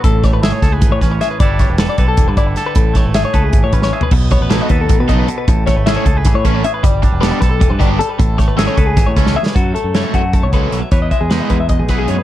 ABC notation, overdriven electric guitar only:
X:1
M:7/8
L:1/8
Q:1/4=154
K:F#dor
V:1 name="Overdriven electric guitar"
z6 z | z6 z | z6 z | z2 [F,B,DA] z2 [F,B,DA] z |
z2 [A,CEA] z2 [A,CEA] z | z2 [=G,B,=D=G] z2 [G,B,DG] z | z2 [A,CEA] z2 [A,CEA] z | z2 [F,A,CA] z2 [F,A,CA] z |
z2 [G,B,EG] z2 [G,B,EG] z |]